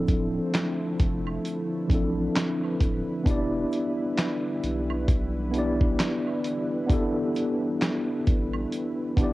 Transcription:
Already playing: sub bass D1, analog synth pad D3 F3 A3 C4 E4, tine electric piano F3 C4 D4 E4 A4
0.07 kick, closed hi-hat, shaker
0.54 snare, clap, closed hi-hat, shaker
0.99 sub bass F1, kick, closed hi-hat, shaker
1.27 high woodblock
1.44 analog synth pad B4, closed hi-hat, shaker
1.88 sub bass A1, tine electric piano F3 C4 D4, kick, closed hi-hat, shaker
1.93 tine electric piano E4 A4
2.36 snare, clap, closed hi-hat, shaker
2.64 high woodblock
2.81 sub bass D1, kick, closed hi-hat, shaker
3.24 sub bass E1, analog synth pad E3 G3, tine electric piano B3 D4 E4, kick, closed hi-hat, shaker
3.29 tine electric piano G4 D5
3.71 closed hi-hat, shaker
4.17 snare, clap, closed hi-hat, shaker
4.63 sub bass B1, closed hi-hat, shaker
4.90 high woodblock
5.08 kick, closed hi-hat, shaker
5.52 tine electric piano B3 D4 E4, closed hi-hat, shaker
5.57 tine electric piano G4 D5
5.81 kick
6.00 snare, clap, closed hi-hat, shaker
6.27 high woodblock
6.44 closed hi-hat, shaker
6.87 tine electric piano B3 D4 E4, kick, closed hi-hat
6.91 tine electric piano G4 A4, shaker
7.35 closed hi-hat, shaker
7.81 snare, clap, closed hi-hat, shaker
8.26 sub bass A1, kick, closed hi-hat, shaker
8.53 high woodblock
8.72 closed hi-hat, shaker
9.16 sub bass G1, tine electric piano B3 D4 E4, kick, closed hi-hat, shaker
9.21 tine electric piano G4 D5

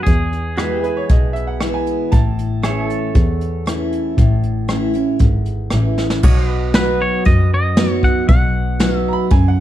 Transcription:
0.03 steel-string acoustic guitar E2, double bass E2, clean electric guitar G#4, kick, closed hi-hat
0.33 closed hi-hat
0.57 steel-string acoustic guitar E3 G#3 B3 E4, pedal steel guitar F#4 B4 E5, cross-stick, closed hi-hat
0.82 pedal steel guitar G#4, upright piano B4, closed hi-hat
0.97 upright piano C#5
1.09 double bass B1, steel-string acoustic guitar B2, upright piano D#5, kick, closed hi-hat
1.33 upright piano E5, closed hi-hat
1.47 upright piano F#5
1.60 steel-string acoustic guitar E3 G#3 B3 E4, cross-stick, closed hi-hat
1.74 upright piano G#5
1.87 closed hi-hat
2.12 double bass A1, steel-string acoustic guitar A2, upright piano A5, kick, closed hi-hat
2.39 closed hi-hat
2.63 steel-string acoustic guitar E3 A3 C#4 E4, pedal steel guitar G#4 C#5 E5, cross-stick, closed hi-hat
2.84 pedal steel guitar A4
2.90 closed hi-hat
3.15 steel-string acoustic guitar E2, double bass E2, kick, closed hi-hat
3.41 closed hi-hat
3.66 steel-string acoustic guitar E3 A3 C#4 E4, cross-stick, closed hi-hat
3.92 closed hi-hat
4.18 double bass A1, steel-string acoustic guitar A2, kick, closed hi-hat
4.43 closed hi-hat
4.68 steel-string acoustic guitar E3 A3 C#4 E4, cross-stick, closed hi-hat
4.94 steel-string acoustic guitar C#4 E4, closed hi-hat
5.19 double bass G#1, steel-string acoustic guitar E2, kick, closed hi-hat
5.46 closed hi-hat
5.70 double bass A1, steel-string acoustic guitar E3 A3 C#4 E4, cross-stick, closed hi-hat
5.98 snare
6.10 snare
6.23 double bass B1, steel-string acoustic guitar B2, pedal steel guitar F#4 C#5 D#5, kick, crash
6.49 pedal steel guitar B4
6.74 steel-string acoustic guitar F#3 B3 D#4 F#4, clean electric guitar B4, snare
7.02 clean electric guitar C#5
7.25 steel-string acoustic guitar F#2, double bass F#2, clean electric guitar D#5, kick, open hi-hat
7.54 clean electric guitar D#5
7.77 steel-string acoustic guitar F#3 B3 D#4 F#4, snare, open hi-hat
8.03 clean electric guitar F#5, kick
8.29 double bass B1, steel-string acoustic guitar B2, clean electric guitar F#5, kick, open hi-hat
8.80 steel-string acoustic guitar F#3 B3 D#4 F#4, snare, open hi-hat
8.98 clean electric guitar E5
9.08 upright piano A#5
9.13 upright piano B5
9.31 double bass F#2, steel-string acoustic guitar C#3, upright piano G#5, kick, open hi-hat
9.48 upright piano F#5

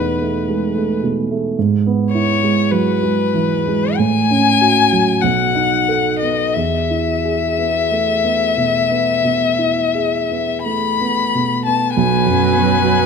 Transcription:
Already playing: grand piano E2 B2 G#3 A3 B3 D#4, violin B4
0.21 grand piano A3
0.48 grand piano G#3
0.76 grand piano A3
1.03 grand piano B2
1.31 grand piano A3
1.59 grand piano G#2
1.86 grand piano B3
2.13 grand piano E4, violin C#5
2.43 grand piano G#3
2.71 grand piano F#3, violin B4
3.03 grand piano G#3
3.34 grand piano E3
3.67 grand piano G#3
3.96 grand piano A2, violin G#5
4.30 grand piano C#4
4.61 grand piano F#4
4.92 grand piano F#3
5.21 grand piano B1, violin F#5
5.55 grand piano D#4
5.88 grand piano A4
6.19 grand piano B3, violin D#5
6.54 grand piano E2, violin E5
6.90 grand piano E4
7.25 grand piano G#4
7.58 grand piano B3
7.91 grand piano A3
8.24 grand piano B3
8.57 grand piano B2
8.91 grand piano B3
9.24 grand piano B2
9.58 grand piano E4
9.95 grand piano G#4
10.31 grand piano B3
10.64 grand piano A3, violin B5
11.01 grand piano B3
11.35 grand piano B2
11.66 grand piano B3, violin A5
11.95 grand piano B1, cello F#3, viola B4, violin G#5
12.26 grand piano F#2
12.55 grand piano B3
12.84 grand piano F#4

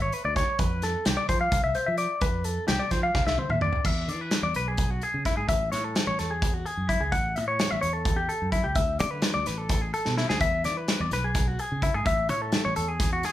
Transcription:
0.00 fingered electric bass G#1, clean electric guitar C#5
0.12 clean electric guitar B4, closed hi-hat
0.25 fingered electric bass D2, clean electric guitar D5
0.36 clean electric guitar C#5, kick, snare, closed hi-hat
0.59 fingered electric bass F2, clean electric guitar B4, kick, closed hi-hat
0.82 clean electric guitar A4, snare, closed hi-hat
1.05 fingered electric bass C2, clean electric guitar G4, snare, closed hi-hat
1.17 clean electric guitar D5
1.29 fingered electric bass F3, clean electric guitar C5, kick, closed hi-hat
1.41 clean electric guitar F5
1.52 fingered electric bass C2, kick, closed hi-hat
1.64 fingered electric bass C2, clean electric guitar E5
1.75 clean electric guitar C5, closed hi-hat
1.86 fingered electric bass F3, clean electric guitar E5
1.97 clean electric guitar D5, closed hi-hat
2.21 fingered electric bass F2, clean electric guitar B4, kick, closed hi-hat
2.44 clean electric guitar A4, closed hi-hat
2.68 fingered electric bass C2, clean electric guitar G4, snare, closed hi-hat
2.79 clean electric guitar D5
2.91 fingered electric bass F3, clean electric guitar C5, kick, snare, closed hi-hat
3.03 clean electric guitar F5
3.15 fingered electric bass C2, kick, snare
3.26 fingered electric bass C2, clean electric guitar E5, snare
3.38 clean electric guitar C5, high tom
3.49 fingered electric bass D#2, clean electric guitar E5, mid tom
3.61 clean electric guitar D5, mid tom
3.73 floor tom
3.85 fingered electric bass E2, clean electric guitar E5, kick, crash
4.08 fingered electric bass E3, clean electric guitar D5, closed hi-hat
4.21 clean electric guitar B4
4.31 snare, closed hi-hat
4.42 fingered electric bass E2, clean electric guitar D5
4.54 fingered electric bass B1, clean electric guitar B4, closed hi-hat
4.68 clean electric guitar G#4
4.77 kick, closed hi-hat
4.91 clean electric guitar F#4
5.02 clean electric guitar G#4, closed hi-hat
5.14 fingered electric bass C#3
5.25 clean electric guitar E4, kick, snare, closed hi-hat
5.37 fingered electric bass G#2, clean electric guitar G#4
5.48 fingered electric bass A1, clean electric guitar E5, kick, closed hi-hat
5.72 fingered electric bass A2, clean electric guitar C#5, snare, closed hi-hat
5.84 clean electric guitar A4
5.95 snare, closed hi-hat
6.07 fingered electric bass A1, clean electric guitar C#5
6.19 fingered electric bass E2, clean electric guitar A4, snare, closed hi-hat
6.31 clean electric guitar G#4
6.42 kick, closed hi-hat
6.54 clean electric guitar F#4
6.66 clean electric guitar G#4, closed hi-hat
6.77 fingered electric bass F#2
6.89 clean electric guitar E4, kick, closed hi-hat
7.01 fingered electric bass C#2, clean electric guitar G#4
7.12 fingered electric bass A1, clean electric guitar F#5, kick, closed hi-hat
7.36 fingered electric bass A2, clean electric guitar E5, closed hi-hat
7.48 clean electric guitar C#5
7.59 snare, closed hi-hat
7.71 fingered electric bass A1, clean electric guitar E5
7.81 fingered electric bass E2, clean electric guitar C#5, closed hi-hat
7.93 clean electric guitar A4
8.05 kick, closed hi-hat
8.16 clean electric guitar G4
8.29 clean electric guitar A4, closed hi-hat
8.42 fingered electric bass F#2
8.52 clean electric guitar E4, kick, closed hi-hat
8.64 fingered electric bass C#2, clean electric guitar G4
8.75 fingered electric bass D2, clean electric guitar E5, kick, closed hi-hat
8.99 fingered electric bass D3, clean electric guitar D5, closed hi-hat
9.11 clean electric guitar B4
9.22 snare, closed hi-hat
9.34 fingered electric bass D2, clean electric guitar D5
9.46 fingered electric bass A1, clean electric guitar B4, snare, closed hi-hat
9.58 clean electric guitar A4
9.69 kick, snare, closed hi-hat
9.81 clean electric guitar G#4
9.94 clean electric guitar A4, closed hi-hat
10.06 fingered electric bass B2, snare
10.17 clean electric guitar E4, snare
10.29 fingered electric bass D2, clean electric guitar G#4, snare
10.40 fingered electric bass E2, clean electric guitar E5, kick, closed hi-hat
10.64 fingered electric bass E3, clean electric guitar D5, snare, closed hi-hat
10.77 clean electric guitar B4
10.88 snare, closed hi-hat
11.00 fingered electric bass E2, clean electric guitar D5
11.11 fingered electric bass B1, clean electric guitar B4, snare, closed hi-hat
11.24 clean electric guitar G#4
11.35 kick, snare, closed hi-hat
11.48 clean electric guitar F#4
11.59 clean electric guitar G#4, closed hi-hat
11.72 fingered electric bass C#3
11.82 clean electric guitar E4, kick, closed hi-hat
11.94 fingered electric bass G#2, clean electric guitar G#4
12.06 fingered electric bass A1, clean electric guitar E5, kick, closed hi-hat
12.29 fingered electric bass A2, clean electric guitar C#5, closed hi-hat
12.42 clean electric guitar A4
12.52 snare, closed hi-hat
12.65 fingered electric bass A1, clean electric guitar C#5
12.76 fingered electric bass E2, clean electric guitar A4, closed hi-hat
12.88 clean electric guitar G#4
13.00 kick, snare, closed hi-hat
13.13 clean electric guitar F#4
13.23 clean electric guitar G#4, snare, closed hi-hat

